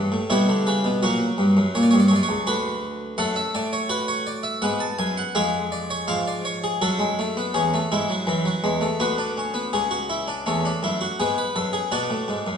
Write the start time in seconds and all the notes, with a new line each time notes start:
Already playing: G2 A3 D4 D5
0.12 A2
0.30 B2 G3 E4 C#5
0.49 D3
0.67 C#3 B4
0.84 B2
1.03 A#2 F#3 F#4 A#4
1.38 G2
1.57 F#2
1.75 A#2 C#5
1.83 D5
1.91 G2 C#5
2.00 D5
2.08 F#2 C#5
2.16 D5
2.23 C#5
2.29 C#2
2.47 D2 F#4 B4
3.18 F#2 A3 A4 F#5
3.36 E5
3.55 A2 D5
3.73 C#5
3.89 F#4 B4
4.08 C#5
4.27 D5
4.43 E5
4.62 G#2 B3 F#5
4.80 A5
4.99 F#2 G#5
5.17 F#5
5.35 F2 G#3 G#4 F5
5.72 D5
5.90 C#5
6.08 G#2 F3 F5
6.28 D5
6.45 C#5
6.64 G#4
6.82 F#2 F#3 F#4 A4
6.99 G#3
7.19 A3
7.37 B3
7.54 E2 C#4 G#4
7.74 A3
7.92 G#2 G#3 E4
8.10 F#3
8.27 F#2 E3
8.46 F#3
8.64 E2 G#3
8.81 A3
9.00 D2 B3 F#4
9.18 D4
9.37 C#4
9.54 B3
9.73 C#2 C#4 G#4
9.91 F#4
10.10 E4
10.28 D4
10.46 E2 A3 C#4
10.65 D4
10.83 F#2 E4
11.01 F#4
11.20 G#2 B3 G#4
11.38 B4
11.56 F#2 A4
11.73 G#4
11.92 B2 D4 F#4 D5
12.10 A2
12.28 G#2
12.47 F#2